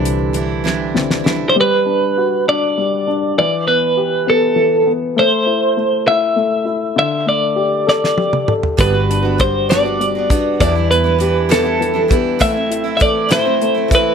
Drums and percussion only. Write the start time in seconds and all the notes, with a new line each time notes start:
0.05 closed hi-hat
0.34 closed hi-hat
0.66 snare
0.96 snare
1.11 snare
1.26 snare
7.88 snare
8.04 snare
8.18 high tom
8.33 mid tom
8.48 mid tom
8.63 floor tom
8.79 kick, closed hi-hat
9.11 closed hi-hat
9.39 kick, closed hi-hat
9.71 snare, closed hi-hat
10.01 closed hi-hat
10.30 kick, closed hi-hat
10.60 kick, closed hi-hat
10.92 closed hi-hat
11.20 closed hi-hat
11.51 snare, closed hi-hat
11.82 closed hi-hat
12.11 kick, closed hi-hat
12.41 kick, closed hi-hat
12.72 closed hi-hat
13.00 kick, closed hi-hat
13.31 snare, closed hi-hat
13.62 closed hi-hat
13.91 kick, closed hi-hat